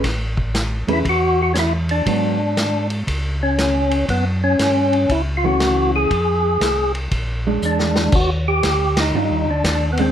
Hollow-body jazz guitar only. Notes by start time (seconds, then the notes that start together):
0.88 A3 C#4 G#4 B4
2.07 F#3 B3 D4
5.44 E3 A3 C#4
7.47 G#3 D4
9.14 D#3 G3 D4 F4
9.99 G#3 C4 D4